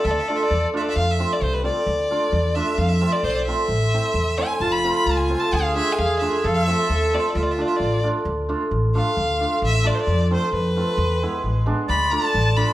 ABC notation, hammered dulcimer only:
X:1
M:2/4
L:1/16
Q:1/4=132
K:none
V:1 name="Hammered dulcimer"
z2 [A,DF] z3 [A,DF] z | z2 [A,CF] z3 [A,CF] z | z2 [A,DF] z3 [A,DF] z | z2 [A,CF] z3 [A,CF] z |
z2 [A,CE] z3 [A,CE] z | z2 [A,CF] z3 [A,CF] z | z2 [A,DF] z3 [A,DF] z | z2 [A,CF] z3 [A,CF] z |
z2 [A,DF] z3 [A,DF] z | z2 [A,DF] z3 [A,DF] z | z2 [A,DF] z3 [A,DF] z | z2 [A,CF] z3 [A,CF] z |
z2 [^G,B,E] z3 [G,B,D] z | z2 [A,DF] z3 [A,DF] z |]